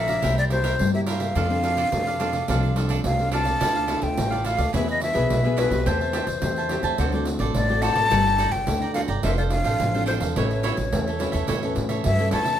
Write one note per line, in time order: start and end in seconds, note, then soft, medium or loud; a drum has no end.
0.00 0.15 A#1 medium
0.00 0.21 F3 medium
0.00 0.19 D4 medium
0.00 0.19 A4 medium
0.00 0.20 C5 medium
0.00 0.37 E5 loud
0.07 0.22 D5 soft
0.07 0.22 F5 soft
0.07 0.21 A#5 soft
0.07 pandeiro medium
0.22 0.72 C2 medium
0.22 0.77 C3 soft
0.22 0.47 A#3 medium
0.22 0.49 E4 medium
0.22 0.47 E4 soft
0.22 0.47 G4 medium
0.22 0.49 A#4 medium
0.22 0.50 C5 medium
0.22 0.51 E5 medium
0.22 pandeiro medium
0.38 0.44 D5 medium
0.38 pandeiro soft
0.50 0.89 A#3 medium
0.50 0.62 E4 soft
0.50 0.89 E4 soft
0.50 0.89 G4 medium
0.50 0.63 A#4 medium
0.50 0.63 C5 medium
0.50 0.91 C5 medium
0.50 0.63 E5 medium
0.50 pandeiro medium
0.64 0.74 E4 medium
0.64 0.74 A#4 medium
0.64 0.74 C5 medium
0.64 0.74 E5 medium
0.64 pandeiro medium
0.79 1.28 G2 medium
0.79 1.33 G3 soft
0.79 pandeiro medium
0.94 1.31 A#3 medium
0.94 1.32 E4 medium
0.94 1.32 G4 medium
0.94 1.01 E5 medium
0.94 pandeiro soft
1.07 1.20 E4 medium
1.07 1.20 A#4 medium
1.07 1.20 C5 medium
1.07 1.18 E5 medium
1.07 2.75 F5 loud
1.07 pandeiro medium
1.20 1.35 A#4 soft
1.20 1.34 C5 soft
1.20 1.34 E5 soft
1.20 pandeiro medium
1.35 1.84 F2 medium
1.35 1.89 F3 medium
1.35 1.46 C4 soft
1.35 1.61 D4 medium
1.35 1.46 D4 medium
1.35 1.62 A4 medium
1.35 1.46 A4 medium
1.35 1.63 D5 medium
1.35 1.64 F5 medium
1.35 pandeiro medium
1.50 1.88 C4 medium
1.50 1.88 D4 medium
1.50 1.88 A4 medium
1.50 pandeiro soft
1.63 1.76 D4 soft
1.63 1.76 A4 soft
1.63 1.77 D5 medium
1.63 1.77 F5 medium
1.63 pandeiro medium
1.77 1.87 D4 medium
1.77 1.87 A4 medium
1.77 1.87 D5 medium
1.77 1.87 F5 medium
1.77 pandeiro soft
1.92 2.40 F2 medium
1.92 2.46 C3 soft
1.92 2.16 C4 soft
1.92 2.16 D4 medium
1.92 2.17 A4 medium
1.92 pandeiro medium
2.07 2.19 A4 soft
2.07 2.19 D5 soft
2.07 2.20 F5 soft
2.07 pandeiro soft
2.19 2.37 C4 soft
2.19 2.33 D4 medium
2.19 2.37 D4 soft
2.19 2.33 A4 medium
2.19 2.37 A4 medium
2.19 2.33 D5 medium
2.19 2.32 F5 medium
2.19 pandeiro medium
2.33 2.48 A4 soft
2.33 2.47 D5 soft
2.33 2.47 F5 soft
2.33 pandeiro medium
2.48 2.96 C2 medium
2.48 3.02 F3 medium
2.48 2.72 C4 medium
2.48 2.75 D4 medium
2.48 2.73 D4 medium
2.48 2.75 A4 medium
2.48 2.73 A4 medium
2.48 2.76 D5 medium
2.48 2.76 F5 medium
2.48 pandeiro medium
2.63 pandeiro soft
2.76 3.03 C4 soft
2.76 2.88 D4 soft
2.76 3.03 D4 soft
2.76 2.89 A4 soft
2.76 3.03 A4 medium
2.76 2.89 D5 soft
2.76 2.89 F5 medium
2.76 pandeiro medium
2.89 2.99 D4 medium
2.89 3.00 A4 medium
2.89 3.00 D5 medium
2.89 3.00 F5 medium
2.89 pandeiro medium
3.04 3.53 C2 medium
3.04 3.58 C3 soft
3.04 3.32 F5 medium
3.04 pandeiro medium
3.19 3.59 C4 soft
3.19 3.59 D4 medium
3.19 3.60 A4 medium
3.19 pandeiro soft
3.31 3.45 D4 medium
3.31 3.46 A4 medium
3.31 3.45 D5 medium
3.31 3.44 F5 medium
3.31 4.05 A5 loud
3.31 pandeiro medium
3.45 3.59 A4 soft
3.45 3.60 D5 soft
3.45 3.59 F5 soft
3.45 pandeiro medium
3.60 3.97 D2 medium
3.60 4.15 D4 soft
3.60 3.74 E4 medium
3.60 3.88 F4 medium
3.60 3.74 A4 medium
3.60 3.88 A4 soft
3.60 3.74 D5 medium
3.60 3.88 E5 medium
3.60 3.74 F5 medium
3.60 pandeiro medium
3.75 3.87 A4 soft
3.75 3.88 D5 soft
3.75 3.88 F5 soft
3.75 pandeiro soft
3.87 4.00 E4 medium
3.87 4.00 A4 medium
3.87 4.01 D5 medium
3.87 4.01 F5 medium
3.87 pandeiro medium
4.01 4.15 D2 medium
4.01 4.27 F4 medium
4.01 4.27 A4 medium
4.01 4.27 E5 medium
4.01 4.47 G5 medium
4.01 muted cavaquinho stroke soft
4.01 pandeiro medium
4.17 4.54 A1 medium
4.17 4.71 A3 medium
4.17 pandeiro medium
4.30 4.69 F4 soft
4.30 4.44 A4 soft
4.30 4.70 A4 medium
4.30 4.44 D5 soft
4.30 4.70 E5 medium
4.30 4.44 F5 soft
4.30 pandeiro soft
4.44 4.58 E4 soft
4.44 4.58 A4 soft
4.44 4.57 D5 soft
4.44 4.74 F5 medium
4.44 4.56 F5 medium
4.44 pandeiro medium
4.57 4.71 D2 medium
4.57 4.72 A4 soft
4.57 4.72 D5 medium
4.57 4.71 F5 medium
4.57 pandeiro medium
4.73 5.10 E2 medium
4.73 5.27 E3 medium
4.73 5.00 B3 medium
4.73 4.86 E4 medium
4.73 5.01 E4 medium
4.73 4.86 G#4 medium
4.73 5.01 G#4 medium
4.73 4.87 B4 medium
4.73 4.86 E5 medium
4.73 4.88 E5 medium
4.73 pandeiro medium
4.87 4.99 G#4 soft
4.87 5.00 B4 soft
4.87 5.02 D#5 medium
4.87 5.00 E5 soft
4.87 pandeiro soft
5.00 5.60 E5 medium
5.00 muted cavaquinho stroke soft
5.00 pandeiro medium
5.14 5.27 B1 medium
5.14 5.39 B3 medium
5.14 5.39 E4 medium
5.14 5.39 G#4 medium
5.14 5.43 G#4 medium
5.14 5.42 B4 medium
5.14 5.42 E5 medium
5.14 pandeiro medium
5.30 5.66 B1 medium
5.30 5.83 B2 medium
5.30 pandeiro medium
5.44 5.68 B3 medium
5.44 5.68 E4 medium
5.44 5.68 G#4 medium
5.44 5.56 G#4 soft
5.44 5.57 B4 soft
5.44 5.57 E5 soft
5.44 pandeiro soft
5.57 5.70 E4 medium
5.57 5.71 G#4 medium
5.57 5.70 B4 medium
5.57 5.89 B4 medium
5.57 5.69 E5 medium
5.57 pandeiro medium
5.70 5.83 B1 medium
5.70 6.23 A3 medium
5.70 6.24 C4 medium
5.70 6.24 G4 medium
5.70 5.85 G#4 soft
5.70 5.85 B4 soft
5.70 5.84 E5 soft
5.70 pandeiro medium
5.86 6.22 E2 medium
5.86 6.40 E3 medium
5.86 5.99 G4 medium
5.86 5.99 C5 medium
5.86 7.29 C5 medium
5.86 6.00 E5 medium
5.86 5.99 A5 medium
5.86 pandeiro medium
6.01 6.13 C5 soft
6.01 6.13 E5 soft
6.01 6.13 A5 soft
6.01 pandeiro soft
6.13 6.26 G4 medium
6.13 6.26 C5 medium
6.13 6.27 E5 medium
6.13 6.27 A5 medium
6.13 pandeiro medium
6.27 6.39 E2 medium
6.27 muted cavaquinho stroke soft
6.27 pandeiro medium
6.42 6.78 E2 loud
6.42 6.96 E3 medium
6.42 6.66 A3 medium
6.42 6.66 C4 soft
6.42 6.66 G4 medium
6.42 pandeiro medium
6.56 6.70 C5 soft
6.56 6.71 E5 soft
6.56 6.70 A5 soft
6.56 pandeiro soft
6.69 6.96 A3 medium
6.69 6.96 C4 medium
6.69 6.96 G4 medium
6.69 6.84 G4 soft
6.69 6.84 C5 soft
6.69 6.84 E5 soft
6.69 6.83 A5 medium
6.69 pandeiro medium
6.83 6.96 E2 medium
6.83 6.98 C5 medium
6.83 6.98 E5 medium
6.83 6.97 A5 medium
6.83 pandeiro medium
6.98 7.35 D2 medium
6.98 7.52 D3 medium
6.98 7.08 A3 soft
6.98 7.08 C4 medium
6.98 7.12 F#4 medium
6.98 7.09 F#4 medium
6.98 7.12 A4 medium
6.98 7.13 C5 medium
6.98 7.13 D5 medium
6.98 pandeiro medium
7.12 7.65 A3 medium
7.12 7.65 C4 medium
7.12 7.65 F#4 medium
7.12 7.26 A4 soft
7.12 7.26 C5 soft
7.12 7.26 D5 soft
7.12 pandeiro soft
7.25 muted cavaquinho stroke soft
7.25 pandeiro medium
7.39 7.52 A1 medium
7.39 7.68 A4 medium
7.39 7.68 C5 medium
7.39 7.67 D5 medium
7.39 pandeiro medium
7.54 7.91 A1 medium
7.54 8.08 A2 medium
7.54 7.84 D5 loud
7.54 pandeiro medium
7.69 8.07 A3 medium
7.69 8.07 C4 medium
7.69 8.07 F#4 medium
7.69 7.82 A4 soft
7.69 7.83 C5 soft
7.69 7.82 D5 soft
7.69 pandeiro soft
7.82 7.96 F#4 medium
7.82 7.96 A4 medium
7.82 7.95 C5 medium
7.82 7.94 D5 medium
7.82 8.53 A5 loud
7.82 pandeiro medium
7.95 8.09 A1 medium
7.95 8.10 A4 soft
7.95 8.10 C5 soft
7.95 8.09 D5 soft
7.95 pandeiro medium
8.11 8.47 G1 medium
8.11 8.64 G3 medium
8.11 8.47 A#3 medium
8.11 8.47 D4 medium
8.11 8.47 A4 medium
8.11 8.24 A4 medium
8.11 8.24 D5 medium
8.11 8.25 G5 medium
8.11 8.25 A#5 medium
8.11 pandeiro medium
8.26 8.38 D5 soft
8.26 8.39 G5 soft
8.26 8.39 A#5 soft
8.26 pandeiro soft
8.38 8.52 A4 medium
8.38 8.52 D5 medium
8.38 8.52 G5 medium
8.38 8.53 A#5 medium
8.38 pandeiro medium
8.52 8.65 G1 medium
8.52 8.94 G5 loud
8.52 muted cavaquinho stroke soft
8.52 pandeiro medium
8.67 9.04 D2 medium
8.67 9.21 D3 soft
8.67 8.84 A#3 medium
8.67 8.84 D4 medium
8.67 8.84 A4 medium
8.67 pandeiro medium
8.82 8.94 D5 soft
8.82 8.94 G5 soft
8.82 8.95 A#5 soft
8.82 pandeiro soft
8.94 9.19 A#3 soft
8.94 9.19 D4 medium
8.94 9.08 A4 soft
8.94 9.19 A4 soft
8.94 9.08 D5 soft
8.94 9.01 F5 medium
8.94 9.08 G5 medium
8.94 9.07 A#5 soft
8.94 pandeiro medium
9.08 9.21 G1 medium
9.08 9.23 D5 medium
9.08 9.22 G5 medium
9.08 9.22 A#5 medium
9.08 pandeiro medium
9.23 9.60 F1 medium
9.23 9.77 F3 medium
9.23 9.33 C4 medium
9.23 9.36 D4 medium
9.23 9.34 D4 medium
9.23 9.37 A4 medium
9.23 9.34 A4 medium
9.23 9.37 C5 medium
9.23 9.36 E5 medium
9.23 9.37 F5 medium
9.23 pandeiro medium
9.37 9.90 C4 medium
9.37 9.90 D4 medium
9.37 9.51 A4 soft
9.37 9.91 A4 medium
9.37 9.51 C5 soft
9.37 9.43 D5 medium
9.37 9.51 F5 soft
9.37 pandeiro soft
9.50 10.04 F5 loud
9.50 muted cavaquinho stroke soft
9.50 pandeiro medium
9.64 9.77 A1 medium
9.64 9.93 A4 soft
9.64 9.93 C5 medium
9.64 9.92 F5 medium
9.64 pandeiro medium
9.80 10.16 A1 medium
9.80 10.33 F3 medium
9.80 pandeiro medium
9.94 10.32 C4 medium
9.94 10.32 D4 medium
9.94 10.32 A4 medium
9.94 10.05 A4 soft
9.94 10.06 C5 soft
9.94 10.07 F5 soft
9.94 pandeiro soft
10.06 10.20 D4 medium
10.06 10.20 A4 medium
10.06 10.21 C5 medium
10.06 10.14 C5 medium
10.06 10.20 F5 medium
10.06 pandeiro medium
10.20 10.33 E2 medium
10.20 10.35 A4 soft
10.20 10.35 C5 soft
10.20 10.34 F5 soft
10.20 pandeiro medium
10.36 10.72 A1 medium
10.36 10.90 A2 medium
10.36 10.88 E3 medium
10.36 10.88 A3 medium
10.36 10.89 C#4 medium
10.36 10.49 E4 medium
10.36 10.50 A4 medium
10.36 11.74 C#5 medium
10.36 10.50 C#5 medium
10.36 10.49 E5 medium
10.36 pandeiro medium
10.51 10.63 A4 soft
10.51 10.63 C#5 soft
10.51 10.63 E5 soft
10.51 pandeiro soft
10.63 10.76 E4 medium
10.63 10.76 A4 medium
10.63 10.76 C#5 medium
10.63 10.77 E5 medium
10.63 pandeiro medium
10.77 10.90 A1 medium
10.77 muted cavaquinho stroke soft
10.77 pandeiro medium
10.93 11.29 E2 medium
10.93 11.19 E3 medium
10.93 11.09 A3 medium
10.93 11.10 C#4 medium
10.93 pandeiro medium
11.07 11.19 A4 soft
11.07 11.19 C#5 soft
11.07 11.20 E5 soft
11.07 pandeiro soft
11.19 11.47 E3 medium
11.19 11.47 A3 soft
11.19 11.47 C#4 medium
11.19 11.33 E4 soft
11.19 11.32 A4 soft
11.19 11.31 C#5 soft
11.19 11.31 E5 medium
11.19 pandeiro medium
11.32 11.46 E2 medium
11.32 11.47 A4 medium
11.32 11.47 C#5 medium
11.32 11.46 E5 medium
11.32 pandeiro medium
11.47 11.73 E2 medium
11.47 12.02 A2 medium
11.47 11.61 E4 medium
11.47 11.61 A4 medium
11.47 11.62 C#5 medium
11.47 11.61 E5 medium
11.47 pandeiro medium
11.63 12.04 E3 medium
11.63 12.15 A3 medium
11.63 12.15 C#4 medium
11.63 11.75 A4 soft
11.63 11.75 C#5 soft
11.63 11.75 E5 soft
11.63 pandeiro soft
11.75 12.02 A2 medium
11.75 muted cavaquinho stroke soft
11.75 pandeiro medium
11.89 12.18 A4 soft
11.89 12.17 C#5 medium
11.89 12.17 E5 medium
11.89 pandeiro medium
12.04 12.31 G2 medium
12.04 12.18 E3 medium
12.04 12.31 E5 medium
12.04 pandeiro medium
12.19 12.57 E3 medium
12.19 12.57 A3 medium
12.19 12.57 C#4 medium
12.19 12.31 A4 soft
12.19 12.31 C#5 soft
12.19 12.32 E5 soft
12.19 pandeiro soft
12.31 12.58 E2 medium
12.31 12.45 E4 medium
12.31 12.45 A4 medium
12.31 12.44 C#5 medium
12.31 12.43 E5 medium
12.31 12.60 A5 loud
12.31 pandeiro medium
12.44 12.59 A4 soft
12.44 12.59 C#5 soft
12.44 12.59 E5 soft
12.44 pandeiro medium